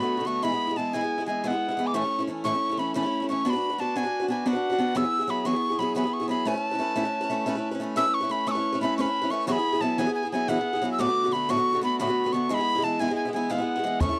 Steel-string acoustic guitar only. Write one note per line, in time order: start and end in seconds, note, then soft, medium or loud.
0.00 0.19 D3 soft
0.00 0.19 A3 soft
0.00 0.18 B3 soft
0.00 0.16 F#4 soft
0.17 0.24 D3 soft
0.17 0.26 A3 soft
0.17 0.26 B3 soft
0.17 0.26 F#4 soft
0.25 0.42 D3 medium
0.25 0.43 A3 medium
0.25 0.43 B3 medium
0.25 0.44 F#4 medium
0.42 0.51 E3 medium
0.42 0.51 G#3 medium
0.42 0.51 B3 medium
0.42 0.49 E4 medium
0.51 0.69 G#3 soft
0.51 0.68 B3 soft
0.51 0.66 E4 soft
0.67 0.76 G#3 soft
0.67 0.77 B3 soft
0.67 0.76 E4 soft
0.76 0.92 E3 soft
0.76 0.93 G#3 soft
0.76 0.94 B3 medium
0.76 0.95 E4 medium
0.93 1.02 E3 medium
0.93 1.02 G#3 medium
0.93 1.02 B3 medium
0.93 1.00 E4 medium
1.01 1.20 G#3 soft
1.01 1.19 B3 soft
1.01 1.17 E4 soft
1.18 1.26 G#3 soft
1.18 1.28 B3 soft
1.18 1.27 E4 soft
1.26 1.42 E3 soft
1.26 1.43 G#3 soft
1.26 1.44 B3 medium
1.26 1.44 E4 medium
1.44 1.52 E3 medium
1.44 1.52 G#3 medium
1.44 1.51 B3 medium
1.44 1.49 E4 medium
1.50 1.70 G#3 soft
1.50 1.69 B3 soft
1.50 1.67 E4 soft
1.69 1.77 G#3 soft
1.69 1.78 B3 soft
1.69 1.77 E4 soft
1.77 1.93 E3 medium
1.77 1.94 G#3 medium
1.77 1.95 B3 medium
1.77 1.95 E4 medium
1.94 2.02 A2 medium
1.94 2.03 E3 medium
1.94 2.03 A3 medium
1.94 2.03 C#4 medium
1.94 2.01 E4 medium
2.02 2.21 A3 soft
2.02 2.19 C#4 soft
2.02 2.17 E4 soft
2.19 2.27 A3 soft
2.19 2.28 C#4 soft
2.19 2.27 E4 medium
2.27 2.44 E3 soft
2.27 2.44 A3 soft
2.27 2.45 C#4 soft
2.27 2.45 E4 medium
2.44 2.52 A2 medium
2.44 2.53 E3 medium
2.44 2.53 A3 medium
2.44 2.53 C#4 medium
2.44 2.51 E4 medium
2.52 2.71 A3 soft
2.52 2.70 C#4 soft
2.52 2.68 E4 soft
2.69 2.78 A3 soft
2.69 2.78 C#4 soft
2.69 2.78 E4 soft
2.77 2.94 E3 soft
2.77 2.95 A3 soft
2.77 2.95 C#4 medium
2.77 2.96 E4 medium
2.94 3.03 A2 medium
2.94 3.03 E3 medium
2.94 3.04 A3 medium
2.94 3.03 C#4 medium
2.94 3.01 E4 medium
3.02 3.21 A3 soft
3.02 3.20 C#4 soft
3.02 3.19 E4 soft
3.20 3.29 A3 soft
3.20 3.29 C#4 soft
3.20 3.28 E4 soft
3.29 3.44 E3 medium
3.29 3.46 A3 medium
3.29 3.46 C#4 medium
3.29 3.47 E4 soft
3.45 3.53 B3 medium
3.45 3.54 D4 medium
3.45 3.53 F#4 medium
3.45 3.52 B4 medium
3.53 3.72 D4 soft
3.53 3.71 F#4 soft
3.53 3.68 B4 medium
3.70 3.78 D4 soft
3.70 3.79 F#4 soft
3.70 3.78 B4 soft
3.78 3.94 B3 medium
3.78 3.95 D4 medium
3.78 3.95 F#4 soft
3.78 3.97 B4 medium
3.96 4.04 B3 medium
3.96 4.04 D4 medium
3.96 4.04 F#4 medium
3.96 4.02 B4 medium
4.03 4.22 D4 soft
4.03 4.21 F#4 soft
4.03 4.18 B4 soft
4.20 4.29 D4 soft
4.20 4.29 F#4 soft
4.20 4.28 B4 soft
4.28 4.44 B3 soft
4.28 4.45 D4 medium
4.28 4.46 F#4 medium
4.28 4.46 B4 medium
4.46 4.54 B3 medium
4.46 4.54 D4 medium
4.46 4.53 F#4 medium
4.46 4.52 B4 medium
4.53 4.72 D4 soft
4.53 4.70 F#4 soft
4.53 4.68 B4 soft
4.70 4.78 D4 soft
4.70 4.79 F#4 soft
4.70 4.78 B4 soft
4.78 4.94 B3 medium
4.78 4.95 D4 medium
4.78 4.96 F#4 medium
4.78 4.97 B4 medium
4.95 5.03 E3 medium
4.95 5.04 F#3 medium
4.95 5.04 B3 medium
4.95 5.03 E4 medium
4.95 5.01 G#4 medium
5.02 5.21 B3 soft
5.02 5.20 E4 soft
5.02 5.18 G#4 soft
5.19 5.28 B3 soft
5.19 5.29 E4 soft
5.19 5.28 G#4 soft
5.28 5.44 F#3 medium
5.28 5.45 B3 medium
5.28 5.45 E4 medium
5.28 5.46 G#4 medium
5.45 5.54 E3 medium
5.45 5.54 F#3 medium
5.45 5.54 B3 medium
5.45 5.53 E4 medium
5.45 5.51 G#4 medium
5.52 5.72 B3 soft
5.52 5.71 E4 soft
5.52 5.69 G#4 soft
5.70 5.79 B3 soft
5.70 5.80 E4 soft
5.70 5.79 G#4 soft
5.79 5.95 F#3 medium
5.79 5.95 B3 medium
5.79 5.96 E4 medium
5.79 5.97 G#4 medium
5.95 6.04 E3 medium
5.95 6.04 F#3 medium
5.95 6.04 B3 medium
5.95 6.04 E4 medium
5.95 6.03 G#4 medium
6.04 6.22 B3 soft
6.04 6.20 E4 soft
6.04 6.18 G#4 soft
6.20 6.28 B3 soft
6.20 6.30 E4 soft
6.20 6.29 G#4 soft
6.28 6.45 F#3 soft
6.28 6.46 B3 medium
6.28 6.46 E4 medium
6.28 6.47 G#4 medium
6.45 6.54 A3 medium
6.45 6.55 C#4 medium
6.45 6.55 E4 medium
6.45 6.53 B4 medium
6.54 6.73 C#4 soft
6.54 6.72 E4 soft
6.54 6.70 B4 soft
6.71 6.78 C#4 soft
6.71 6.79 E4 soft
6.71 6.80 B4 medium
6.79 6.94 A3 medium
6.79 6.95 C#4 medium
6.79 6.96 E4 soft
6.79 6.97 B4 medium
6.96 7.04 A3 medium
6.96 7.05 C#4 medium
6.96 7.04 E4 medium
6.96 7.02 B4 medium
7.03 7.22 C#4 soft
7.03 7.20 B4 soft
7.21 7.29 C#4 soft
7.21 7.30 E4 soft
7.21 7.29 B4 medium
7.30 7.45 A3 medium
7.30 7.46 C#4 medium
7.30 7.46 E4 medium
7.30 7.47 B4 medium
7.46 7.55 A3 medium
7.46 7.55 C#4 medium
7.46 7.56 E4 medium
7.46 7.54 B4 medium
7.55 7.74 C#4 soft
7.55 7.72 E4 soft
7.55 7.70 B4 medium
7.71 7.80 C#4 soft
7.71 7.81 E4 soft
7.71 7.80 B4 medium
7.80 7.95 A3 medium
7.80 7.96 C#4 medium
7.80 7.96 E4 medium
7.80 7.97 B4 medium
7.96 8.05 A3 medium
7.96 8.05 C#4 medium
7.96 8.05 E4 medium
7.96 8.03 B4 medium
8.05 8.21 E4 soft
8.05 8.19 B4 soft
8.21 8.30 C#4 soft
8.21 8.31 E4 medium
8.21 8.30 B4 medium
8.29 8.46 A3 medium
8.29 8.46 C#4 medium
8.29 8.47 E4 soft
8.29 8.48 B4 medium
8.47 8.55 A3 medium
8.47 8.56 C#4 medium
8.47 8.56 E4 medium
8.47 8.54 B4 medium
8.55 8.74 C#4 soft
8.55 8.73 E4 soft
8.55 8.71 B4 soft
8.73 8.82 C#4 soft
8.73 8.81 E4 soft
8.73 8.81 B4 medium
8.81 8.97 A3 soft
8.81 8.98 C#4 medium
8.81 8.98 E4 medium
8.81 8.99 B4 medium
8.98 9.06 A3 medium
8.98 9.07 C#4 medium
8.98 9.06 E4 medium
8.98 9.04 B4 medium
9.05 9.22 E4 soft
9.05 9.20 B4 medium
9.22 9.30 C#4 soft
9.22 9.31 E4 soft
9.22 9.30 B4 medium
9.30 9.47 A3 soft
9.30 9.48 C#4 medium
9.30 9.48 E4 medium
9.30 9.49 B4 medium
9.47 9.56 E3 medium
9.47 9.56 F#3 medium
9.47 9.56 B3 medium
9.47 9.57 E4 medium
9.47 9.55 G#4 medium
9.56 9.74 B3 soft
9.56 9.73 E4 soft
9.56 9.71 G#4 soft
9.73 9.81 B3 soft
9.73 9.82 E4 soft
9.73 9.81 G#4 soft
9.81 9.98 F#3 soft
9.81 9.98 B3 medium
9.81 9.99 E4 medium
9.81 9.99 G#4 medium
9.98 10.06 E3 medium
9.98 10.07 F#3 medium
9.98 10.07 B3 medium
9.98 10.07 E4 medium
9.98 10.05 G#4 medium
10.07 10.25 B3 soft
10.07 10.24 E4 soft
10.07 10.22 G#4 soft
10.23 10.32 B3 soft
10.23 10.32 E4 soft
10.23 10.31 G#4 soft
10.32 10.48 F#3 medium
10.32 10.48 B3 soft
10.32 10.49 E4 medium
10.32 10.49 G#4 medium
10.48 10.57 E3 medium
10.48 10.57 F#3 medium
10.48 10.57 B3 medium
10.48 10.57 E4 medium
10.48 10.56 G#4 medium
10.57 10.75 B3 soft
10.57 10.74 E4 soft
10.57 10.72 G#4 soft
10.73 10.81 B3 soft
10.73 10.83 E4 soft
10.73 10.82 G#4 soft
10.82 10.98 F#3 medium
10.82 10.99 B3 medium
10.82 11.00 E4 medium
10.82 11.00 G#4 medium
10.98 11.07 D2 medium
10.98 11.07 A2 medium
10.98 11.07 D3 medium
10.98 11.07 A3 medium
10.98 11.08 B3 medium
10.98 11.05 F#4 medium
11.07 11.25 D3 soft
11.07 11.24 A3 soft
11.07 11.25 B3 soft
11.07 11.22 F#4 soft
11.24 11.30 D3 soft
11.24 11.33 A3 soft
11.24 11.32 B3 soft
11.24 11.32 F#4 soft
11.31 11.48 D3 medium
11.31 11.49 A3 medium
11.31 11.49 B3 medium
11.31 11.49 F#4 medium
11.49 11.57 D2 medium
11.49 11.57 A2 medium
11.49 11.58 D3 medium
11.49 11.56 A3 medium
11.49 11.57 B3 medium
11.49 11.55 F#4 medium
11.57 11.75 D3 soft
11.57 11.73 A3 soft
11.57 11.73 B3 soft
11.57 11.72 F#4 soft
11.73 11.80 D3 soft
11.73 11.82 A3 soft
11.73 11.82 B3 soft
11.73 11.82 F#4 medium
11.81 11.99 D3 medium
11.81 12.00 A3 medium
11.81 11.99 B3 medium
11.81 12.00 F#4 medium
11.99 12.08 D2 medium
11.99 12.08 A2 medium
11.99 12.08 D3 medium
11.99 12.08 A3 medium
11.99 12.08 B3 medium
11.99 12.06 F#4 medium
12.07 12.26 D3 soft
12.07 12.24 A3 soft
12.07 12.25 B3 soft
12.07 12.23 F#4 soft
12.24 12.31 D3 soft
12.24 12.33 A3 soft
12.24 12.33 B3 soft
12.24 12.32 F#4 soft
12.33 12.49 D3 medium
12.33 12.51 A3 medium
12.33 12.50 B3 medium
12.33 12.51 F#4 medium
12.49 12.58 E3 medium
12.49 12.58 G#3 medium
12.49 12.58 B3 medium
12.49 12.56 E4 medium
12.58 12.76 G#3 soft
12.58 12.75 B3 soft
12.58 12.74 E4 soft
12.75 12.83 G#3 soft
12.75 12.84 B3 soft
12.75 12.83 E4 soft
12.82 12.98 E3 medium
12.82 12.99 G#3 medium
12.82 13.00 B3 soft
12.82 13.00 E4 medium
12.99 13.08 E3 medium
12.99 13.08 G#3 medium
12.99 13.09 B3 medium
12.99 13.07 E4 medium
13.08 13.27 G#3 soft
13.08 13.26 B3 soft
13.08 13.24 E4 soft
13.25 13.33 G#3 soft
13.25 13.34 B3 soft
13.25 13.33 E4 soft
13.33 13.48 E3 soft
13.33 13.49 G#3 soft
13.33 13.50 B3 medium
13.33 13.51 E4 medium
13.50 13.58 E3 medium
13.50 13.59 G#3 medium
13.50 13.59 B3 medium
13.50 13.57 E4 medium
13.58 13.77 G#3 soft
13.58 13.76 B3 soft
13.58 13.74 E4 soft
13.76 13.83 G#3 soft
13.76 13.85 B3 soft
13.76 13.84 E4 medium
13.84 14.00 E3 medium
13.84 14.01 G#3 soft
13.84 14.02 B3 medium
13.84 14.02 E4 medium
14.00 14.09 A2 medium
14.00 14.09 E3 medium
14.00 14.10 A3 medium
14.00 14.10 C#4 medium
14.00 14.08 E4 medium
14.09 14.19 A3 soft
14.09 14.19 C#4 soft
14.09 14.19 E4 soft